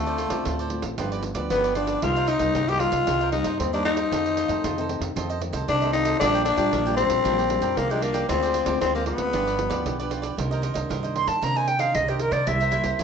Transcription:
Already playing: D2 D3 A3 C4 F4
0.07 A4 C5 D5, pandeiro
0.18 F4 A4 C5 D5, pandeiro
0.30 D2 A3 C4 F4 A4 C5 D5, pandeiro
0.45 D2 A2 F4 A4 C5 D5, pandeiro
0.59 A4 C5 D5, pandeiro
0.70 A3 C4 F4, pandeiro
0.82 A1, muted cavaquinho stroke, pandeiro
0.98 G1 G2 F3 B3 D4 F4 G4 B4 D5, pandeiro
1.12 G4 B4 D5, pandeiro
1.23 muted cavaquinho stroke, pandeiro
1.35 D2 F3 B3 D4 G4 B4 D5, pandeiro
1.50 G1 D3 B3, pandeiro
1.64 G4 B4 D5, pandeiro
1.75 F3 B3 D4 F4 G4 B4 D5, pandeiro
1.87 G4 B4 D5, pandeiro
2.02 C2 C3 G3 A#3 D#4 F4 A#4 C5 D#5, pandeiro
2.16 A#4 C5 D#5, pandeiro
2.27 D#4 A#4 C5 D#5, pandeiro
2.39 C2 G3 A#3 D#4 A#4 C5 D#5, pandeiro
2.55 C2 G2 D#4 A#4 C5 D#5, pandeiro
2.68 G3 A#3 D#4 G4 A#4 C5 D#5, pandeiro
2.80 G3 A#3 D#4 F4, pandeiro
2.92 C2, muted cavaquinho stroke, pandeiro
3.07 C2 C3 D#4 A#4 C5 D#5, pandeiro
3.21 A#4 C5 D#5, pandeiro
3.32 G3 A#3 D#4, muted cavaquinho stroke, pandeiro
3.44 G2 A#4 C5 D#5, pandeiro
3.59 D#2 G2 C4, pandeiro
3.73 G3 A#3 D4 D#4 A#4 C5 D#5, pandeiro
3.84 D#4 A#4 C5 D#5, pandeiro
3.96 A#4 C5 D#5, pandeiro
4.12 F2 D#3 A3 C4 F4 A4 C5 D#5, pandeiro
4.26 A4 C5 D#5, pandeiro
4.37 F4 A4 C5 D#5, pandeiro
4.48 F2 D#3 A3 C4 A4 C5 D#5, pandeiro
4.64 F2 C3 F4 A4 C5 D#5, pandeiro
4.78 D#3 A3 C4 A4 C5 D#5, pandeiro
4.89 D#3 A3 C4, pandeiro
5.01 F2, muted cavaquinho stroke, pandeiro
5.16 F2 D#3 A3 C4 F4 A4 C5 D#5, pandeiro
5.30 A4 C5 D#5, pandeiro
5.41 D#3 A3 C4, muted cavaquinho stroke, pandeiro
5.53 C2 A4 C5 D#5, pandeiro
5.68 C2 C3 D4, pandeiro
5.81 D#3 A3 C4 A4 C5 D#5, pandeiro
5.93 D#4 F4 A4 C5 D#5, pandeiro
6.05 A4 C5 D#5, pandeiro
6.20 A#1 A#2 G3 D4 F4 A#4 D5 G5, pandeiro
6.34 A#4 D5 G5, pandeiro
6.45 D4 A#4 D5 G5, pandeiro
6.57 A#1 G3 D4 F4 A#4 D5 G5, pandeiro
6.72 A#1 F3 D4 A#4 D5 G5, pandeiro
6.86 G3 D4 F4 A#4 D5 G5, pandeiro
6.96 G3 C4 D4 F4, pandeiro
7.09 A#1, muted cavaquinho stroke, pandeiro
7.24 A#1 A#2 G3 D4 F4 A#4 D5 G5, pandeiro
7.38 A#4 D5 G5, pandeiro
7.49 G3 D4 F4, muted cavaquinho stroke, pandeiro
7.61 F2 A#4 D5 G5, pandeiro
7.77 C2 F3 A#3, pandeiro
7.90 G3 G#3 D4 F4 A#4 D5 G5, pandeiro
8.02 A#3 D4 A#4 D5 G5, pandeiro
8.13 A#4 D5 G5, pandeiro
8.29 D2 D3 G#3 C4 F4 G#4 C5 D5, pandeiro
8.42 G#4 C5 D5, pandeiro
8.54 F4 G#4 C5 D5, pandeiro
8.66 D2 G#3 C4 F4 G#4 C5 D5, pandeiro
8.81 D2 D3 C4 F4 G#4 C5 D5, pandeiro
8.95 G#3 A#3 C4 F4 G#4 C5 D5, pandeiro
9.06 G#3 B3 C4 F4, pandeiro
9.18 D2, muted cavaquinho stroke, pandeiro
9.33 G1 G2 F3 B3 D4 F4 G4 B4 D5, pandeiro
9.47 G4 B4 D5, pandeiro
9.58 F3 B3 D4, muted cavaquinho stroke, pandeiro
9.70 D2 G4 B4 D5, pandeiro
9.86 B1 D3, pandeiro
9.99 F3 B3 D4 G4 B4 D5, pandeiro
10.11 F4 G4 B4 D5, pandeiro
10.22 G4 B4 D5, pandeiro
10.37 C2 C3 D#3 A#3 D4 D#4 A#4 C5 D#5, pandeiro
10.51 A#4 C5 D#5, pandeiro
10.62 D#4 A#4 C5 D#5, pandeiro
10.74 C2 D#3 A#3 D4 A#4 C5 D#5, pandeiro
10.89 C2 G2 D#4 A#4 C5 D#5, pandeiro
11.03 D#3 A#3 D4 A#4 C5 D#5, pandeiro
11.16 C6, pandeiro
11.27 G2 A5, muted cavaquinho stroke, pandeiro
11.42 C3 D#3 A#3 D4 D#4 A#4 C5 D#5 A#5, pandeiro
11.55 A#4 C5 D#5 G#5, pandeiro
11.68 G5, muted cavaquinho stroke, pandeiro
11.79 D#3 A#3 D4 A#4 C5 D#5 F5, pandeiro
11.94 C2 G2 D#5, pandeiro
12.08 D#3 A#3 D4 G4 A#4 C5 D#5, pandeiro
12.19 D#4 A#4 C5 D#5, pandeiro
12.31 C3 A#4 C5 D5 D#5, pandeiro
12.46 C2 C3 G3 A#3 E4 A#4 C5 E5, pandeiro
12.60 A#4 C5 E5, pandeiro
12.71 G3 A#3 E4 A#4 C5 E5, pandeiro
12.83 C2 A#4 C5 E5, pandeiro
12.99 C2 G2 E4 A#4, pandeiro

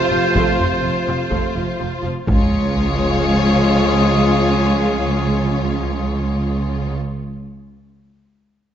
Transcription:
Already playing: C3 F3 A3 F4 C5
0.10 F1 F2 F3
0.35 F1 F2 A3, taiko
0.59 F1 F2 F3, taiko low-mid
0.83 F1 F2 C3
1.07 F1 F2 F3, taiko rim
1.31 F1 F2 A3, taiko
1.56 F1 F2 F3
1.79 F1 F2 C3
2.03 F1 F2 F3
2.28 C#2 C#3 F3 G#3 F4 G#4 C#5, taiko, sub drop

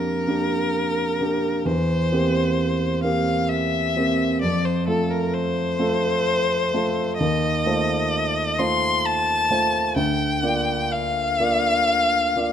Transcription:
Already playing: F2 A#3 D4 G4 A#4
0.27 A#3 D4 G4
1.20 A#3 D4 G4
1.65 E2 C5
2.12 A#3 C4 G4
3.04 A#3 C4 G4 F5
3.49 E5
3.96 A#3 C4 G4
4.41 F2 D5
4.65 C5
4.88 A3 F4 A4
5.10 A#4
5.33 C5
5.79 A3 F4 A4
6.74 A3 F4 A4
7.18 D#2 D#5
7.66 A3 F4 C5
8.59 A3 F4 C5 C6
9.05 A5
9.51 A3 F4 C5
9.96 D2 G5
10.43 A#3 F4 D5
10.92 F5
11.40 A#3 F4 D5
12.36 A#3 F4 D5

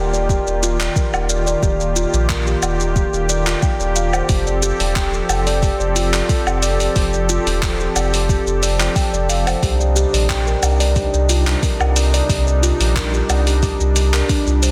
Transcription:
Already playing: D#1 D#3 A#3 F4 G4 G5
0.13 D5, shaker
0.29 G4, kick, shaker
0.47 D#1 D5, shaker
0.63 F4, shaker
0.80 D5, clap, shaker
0.96 A#4, kick, shaker
1.13 D#1 A#4, low woodblock, shaker
1.29 D5, shaker
1.47 D5, shaker
1.63 D#1 G4, kick, shaker
1.80 D5, shaker
1.96 F4, shaker
2.13 A#1, shaker
2.29 A#4, kick, clap, shaker
2.47 G4, shaker
2.62 D#1 D5, low woodblock, shaker
2.80 G4, shaker
2.96 G4, kick, shaker
3.13 D#1 G4, shaker
3.29 D5, shaker
3.47 F4, clap, shaker
3.62 G5, kick, shaker
3.80 D#1 D5, shaker
3.96 F5, shaker
4.13 C5, low woodblock, shaker
4.29 F1 F3 C4 G4 A4, kick, open hi-hat, shaker
4.47 D5, shaker
4.63 G4, shaker
4.80 D#1 D5, open hi-hat, shaker
4.96 G5, kick, clap, open hi-hat, shaker
5.13 A4, shaker
5.29 F1 G5, open hi-hat, low woodblock, shaker
5.47 D5, open hi-hat, shaker
5.63 G4, kick, open hi-hat, shaker
5.80 F1 D5, shaker
5.96 F4, open hi-hat, shaker
6.13 D5, clap, open hi-hat, shaker
6.29 A4, kick, open hi-hat, shaker
6.46 F1 A4, low woodblock, shaker
6.62 D5, open hi-hat, shaker
6.80 D5, open hi-hat, shaker
6.96 F1 G4, kick, open hi-hat, shaker
7.13 D5, shaker
7.29 F4, shaker
7.46 D#1, open hi-hat, shaker
7.63 kick, clap, open hi-hat, shaker
7.80 G4, shaker
7.95 F1 D5, open hi-hat, low woodblock, shaker
8.14 G4, open hi-hat, shaker
8.29 G4, kick, open hi-hat, shaker
8.47 F1 G4, shaker
8.63 D5, open hi-hat, shaker
8.80 F4, clap, open hi-hat, shaker
8.96 G5, kick, open hi-hat, shaker
9.13 F1 D5, shaker
9.29 F5, open hi-hat, shaker
9.47 C5, open hi-hat, low woodblock, shaker
9.63 C2 C3 G3 D4 D#4 G4, kick, open hi-hat, shaker
9.80 D5, shaker
9.96 G4, shaker
10.13 A#1 D5, open hi-hat, shaker
10.29 G5, kick, clap, open hi-hat, shaker
10.47 A#4, shaker
10.62 C2 G5, open hi-hat, low woodblock, shaker
10.80 D5, open hi-hat, shaker
10.96 G4, kick, open hi-hat, shaker
11.13 C2 D5, shaker
11.29 F4, open hi-hat, shaker
11.47 D5, clap, open hi-hat, shaker
11.63 A#4, kick, open hi-hat, shaker
11.80 C2 A#4, low woodblock, shaker
11.96 D5, open hi-hat, shaker
12.13 D5, open hi-hat, shaker
12.29 C2 G4, kick, open hi-hat, shaker
12.47 D5, shaker
12.63 F4, open hi-hat, shaker
12.80 A#1 F4, open hi-hat, shaker
12.96 A#4, kick, clap, open hi-hat, shaker
13.14 G4, shaker
13.29 C2 D5, open hi-hat, low woodblock, shaker
13.47 G4, open hi-hat, shaker
13.63 G4, kick, open hi-hat, shaker
13.80 C2 G4, shaker
13.96 G4, open hi-hat, shaker
14.14 A#4, clap, open hi-hat, shaker
14.29 D4, kick, open hi-hat, shaker
14.47 C2 F4, shaker
14.62 C5, open hi-hat, shaker

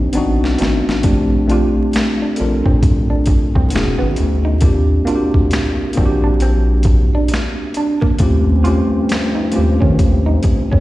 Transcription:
Already playing: A#3 C4 D4 D#4 G4
0.13 B3 C4 D4 D#4, closed hi-hat
0.17 A1 F#4
0.42 B1, snare
0.58 G#1 A3 B3 C4 D4 D#4 F#4, snare, closed hi-hat
0.88 A1, snare
1.02 A#1 A3 C4 D4 F4 G4, kick, closed hi-hat
1.48 A3 C4 D4 F4 G4, closed hi-hat
1.77 A#1
1.93 finger snap, snare, closed hi-hat
2.22 D4
2.36 C4 D4 A4, muted clean electric guitar stroke, closed hi-hat
2.40 A#1 F4 A#4
2.66 A#2 C4, kick
2.83 A#1, kick, closed hi-hat
3.10 D4
3.26 kick, closed hi-hat
3.30 muted clean electric guitar stroke
3.55 C2 C4, kick
3.70 B3 C#4 D#4, closed hi-hat
3.75 E1 F#4 G#4, finger snap, snare
3.99 G#1 B3
4.16 D2, muted clean electric guitar stroke, closed hi-hat
4.45 D#4
4.61 D#2 A#3 C4 D4 F4 G4, kick, closed hi-hat
5.05 A#3 C4 D4 F4 F#4, closed hi-hat
5.15 G4
5.34 D2, kick
5.51 finger snap, muted clean electric guitar stroke, snare, closed hi-hat
5.93 A#3 C4, closed hi-hat
5.97 A#1 C4 D4 F4 F#4, kick
6.05 G4
6.24 D4
6.40 C4, closed hi-hat
6.83 kick, closed hi-hat
6.87 muted clean electric guitar stroke
7.15 D4
7.28 muted clean electric guitar stroke, closed hi-hat
7.34 finger snap, snare
7.74 D4, closed hi-hat
8.02 A#3, kick
8.19 D#2 G2 F3 A3 C4 C#4 F4 G4, kick, closed hi-hat
8.64 A3 C4 C#4 F4 G4, closed hi-hat
8.95 D#2
9.09 finger snap, snare, closed hi-hat
9.35 D#4
9.52 A3 C4 C#4 F4, muted clean electric guitar stroke, closed hi-hat
9.56 D#2 G4
9.81 D#3 C#4, kick
9.99 D#2, kick, closed hi-hat
10.26 D#4
10.43 muted clean electric guitar stroke, kick, closed hi-hat
10.72 F2 C#4, kick

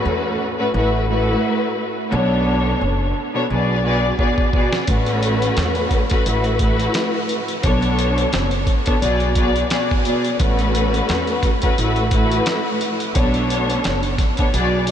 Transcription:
Already playing: A2 A3 C#4 F#4 B4
0.05 E2
0.58 A2 A3 C#4 F#4 B4
0.74 A1 A2 A3 E4 F#4 B4
1.08 A2 A3 E4 F#4 B4
2.11 B1 B2 B3 D4 A4 C#5
2.81 F#1
3.34 B2 B3 D4 A4 C#5
3.49 B1 B2 B3 F#4 G#4 D5
3.84 B2 B3 F#4 G#4 D5
4.18 B2 B3 F#4 G#4 D5, kick
4.38 kick
4.53 B2 B3 F#4 G#4 D5, kick
4.73 snare
4.87 A1 A2 A3 C#4 F#4 B4, kick, closed hi-hat
5.06 closed hi-hat
5.23 closed hi-hat
5.42 closed hi-hat
5.57 E2, snare, clap, closed hi-hat
5.75 closed hi-hat
5.91 kick, closed hi-hat
6.09 A2 A3 C#4 F#4 B4, kick, closed hi-hat
6.26 A1 A2 A3 E4 F#4 B4, closed hi-hat
6.44 closed hi-hat
6.59 A2 A3 E4 F#4 B4, kick, closed hi-hat
6.79 closed hi-hat
6.94 snare, clap, closed hi-hat
7.29 closed hi-hat
7.48 closed hi-hat
7.62 B1 B2 B3 D4 A4 C#5, kick, closed hi-hat
7.82 closed hi-hat
7.99 closed hi-hat
8.18 closed hi-hat
8.33 F#1, snare, clap, closed hi-hat
8.51 closed hi-hat
8.67 kick, closed hi-hat
8.85 B2 B3 D4 A4 C#5, kick, closed hi-hat
9.01 B1 B2 B3 F#4 G#4 D5, closed hi-hat
9.20 closed hi-hat
9.35 B2 B3 F#4 G#4 D5, kick, closed hi-hat
9.56 closed hi-hat
9.70 B2 B3 F#4 G#4 D5, snare, clap, closed hi-hat
9.91 kick
10.04 B2 B3 F#4 G#4 D5, closed hi-hat
10.25 closed hi-hat
10.38 A1 A2 A3 C#4 F#4 B4, kick, closed hi-hat
10.59 closed hi-hat
10.75 closed hi-hat
10.94 closed hi-hat
11.09 E2, snare, clap, closed hi-hat
11.27 closed hi-hat
11.43 kick, closed hi-hat
11.61 A2 A3 C#4 F#4 B4, kick, closed hi-hat
11.78 A1 A2 A3 E4 F#4 B4, closed hi-hat
11.96 closed hi-hat
12.11 A2 A3 E4 F#4 B4, kick, closed hi-hat
12.31 closed hi-hat
12.46 snare, clap, closed hi-hat
12.81 closed hi-hat
13.00 closed hi-hat
13.14 B1 B2 B3 D4 A4 C#5, kick, closed hi-hat
13.34 closed hi-hat
13.50 closed hi-hat
13.70 closed hi-hat
13.84 F#1, snare, clap, closed hi-hat
14.03 closed hi-hat
14.18 kick, snare, closed hi-hat
14.37 B2 B3 D4 A4 C#5, kick, closed hi-hat
14.52 B1 B2 B3 F#4 G#4 D5, closed hi-hat
14.87 B2 B3, closed hi-hat

